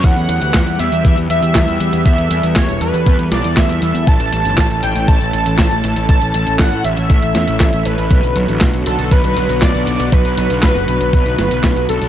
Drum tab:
HH |xxxxxxxxxxxxxxxx|xxxxxxxxxxxxxxxx|xxxxxxxxxxxxxxxx|xxxxxxxxxxxxxxxx|
CP |----x-------x---|----x-------x---|----x-------x---|----x-------x---|
SD |----o-------o---|----o-----o-o---|----o-------o---|----o-----o-o---|
BD |o---o---o---o---|o---o---o---o---|o---o---o---o---|o---o---o---o---|

HH |xxxxxxxxxxxxxxxx|xxxxxxxxxxxxxxxx|
CP |----x-------x---|----x-------x---|
SD |----o-------o---|----o-----o-o---|
BD |o---o---o---o---|o---o---o---o---|